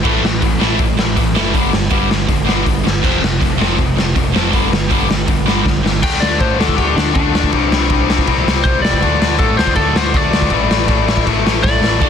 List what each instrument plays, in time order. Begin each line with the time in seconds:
0.03 picked electric bass A1, distorted electric guitar A2 E3 A3, kick, crash
0.22 picked electric bass A1, distorted electric guitar A2 E3, snare
0.42 picked electric bass A1, distorted electric guitar A2 E3, kick, open hi-hat
0.59 picked electric bass A1, distorted electric guitar A2 E3 A3, snare
0.79 picked electric bass A1, distorted electric guitar A2 E3, kick, open hi-hat
0.99 distorted electric guitar A2 E3, snare
1.16 picked electric bass A1, distorted electric guitar A2 E3, kick, open hi-hat
1.35 picked electric bass F#1, distorted electric guitar A2 E3 A3, snare
1.53 picked electric bass G1, distorted electric guitar G2 D3 G3, kick, open hi-hat
1.72 picked electric bass G1, distorted electric guitar G2 D3, snare
1.90 picked electric bass G1, distorted electric guitar G2 D3 G3, kick, open hi-hat
2.10 distorted electric guitar G2 D3, snare
2.29 picked electric bass G1, distorted electric guitar G2 D3, kick, open hi-hat
2.45 distorted electric guitar G2 D3 G3, snare
2.65 picked electric bass G1, distorted electric guitar G2 D3, kick, open hi-hat
2.84 picked electric bass G1, distorted electric guitar G2 D3, snare
3.02 picked electric bass F1, distorted electric guitar F2 C3 F3, kick, crash
3.21 picked electric bass F1, distorted electric guitar F2 C3, snare
3.40 picked electric bass F1, distorted electric guitar F2 C3, kick, open hi-hat
3.58 picked electric bass F1, distorted electric guitar F2 C3 F3, snare
3.77 picked electric bass F1, distorted electric guitar F2 C3, kick, open hi-hat
3.97 distorted electric guitar F2 C3, snare
4.16 picked electric bass F1, distorted electric guitar F2 C3, kick, open hi-hat
4.34 picked electric bass F1, distorted electric guitar F2 C3 F3, snare
4.52 picked electric bass G1, distorted electric guitar G2 D3 G3, kick, open hi-hat
4.71 picked electric bass G1, distorted electric guitar G2 D3, snare
4.90 picked electric bass G1, distorted electric guitar G2 D3 G3, kick, open hi-hat
5.09 distorted electric guitar G2 D3, snare
5.27 picked electric bass G1, distorted electric guitar G2 D3, kick, open hi-hat
5.46 distorted electric guitar G2 D3 G3, snare
5.64 picked electric bass G1, distorted electric guitar G2 D3, kick, snare
5.84 picked electric bass G1, distorted electric guitar G2 D3, snare
6.02 picked electric bass D2, distorted electric guitar D3 A3 D4, lead electric guitar G5, kick, crash
6.20 picked electric bass D2, distorted electric guitar D3 A3 D4, lead electric guitar D5, snare
6.38 picked electric bass A2, distorted electric guitar D3 A3 D4, lead electric guitar C5, kick, crash
6.58 picked electric bass D2, distorted electric guitar D3 A3 D4, lead electric guitar A4, snare
6.69 kick
6.76 picked electric bass D2, distorted electric guitar D3 A3 D4, lead electric guitar G4, kick, crash
6.95 picked electric bass D2, distorted electric guitar D3 A3 D4, lead electric guitar D4, snare
7.14 picked electric bass D2, distorted electric guitar D3 A3 D4, lead electric guitar D4, kick, crash
7.33 picked electric bass D2, distorted electric guitar D3 A3 D4, snare
7.44 kick
7.51 picked electric bass C2, distorted electric guitar C3 G3 C4, kick, crash
7.70 picked electric bass C2, distorted electric guitar C3 G3 C4, snare
7.89 picked electric bass C2, distorted electric guitar C3 G3 C4, kick, crash
8.08 distorted electric guitar C3 G3 C4, snare
8.18 kick
8.27 picked electric bass C2, distorted electric guitar C3 G3 C4, kick, crash
8.45 picked electric bass C2, distorted electric guitar C3 G3 C4, snare
8.64 picked electric bass C2, distorted electric guitar C3 G3 C4, lead electric guitar C5, kick, crash
8.82 picked electric bass C2, distorted electric guitar C3 G3 C4, lead electric guitar D5, snare
8.93 kick
9.02 picked electric bass D2, distorted electric guitar D3 A3 D4, kick, crash
9.20 picked electric bass D2, distorted electric guitar D3 A3 D4, snare
9.38 picked electric bass A2, distorted electric guitar D3 A3 D4, lead electric guitar A4, kick, crash
9.57 picked electric bass D2, distorted electric guitar D3 A3 D4, lead electric guitar C5, snare
9.67 kick
9.75 picked electric bass D2, distorted electric guitar D3 A3 D4, lead electric guitar A4, kick, crash
9.95 picked electric bass D2, distorted electric guitar D3 A3 D4, lead electric guitar C5, snare
10.13 picked electric bass D2, distorted electric guitar D3 A3 D4, lead electric guitar D5, kick, crash
10.32 picked electric bass D2, distorted electric guitar D3 A3 D4, snare
10.42 kick
10.50 picked electric bass A1, distorted electric guitar A2 E3 A3, kick, crash
10.70 picked electric bass A1, distorted electric guitar A2 E3 A3, snare
10.87 picked electric bass A1, distorted electric guitar A2 E3 A3, kick, crash
11.06 distorted electric guitar A2 E3 A3, snare
11.17 kick
11.26 picked electric bass A1, distorted electric guitar A2 E3 A3, kick, crash
11.44 picked electric bass A1, distorted electric guitar A2 E3 A3, snare
11.63 picked electric bass A1, distorted electric guitar A2 E3 A3, lead electric guitar D5, kick, snare
11.82 picked electric bass A1, distorted electric guitar A2 E3 A3, snare
12.01 picked electric bass D2, distorted electric guitar D3 A3 D4, kick, crash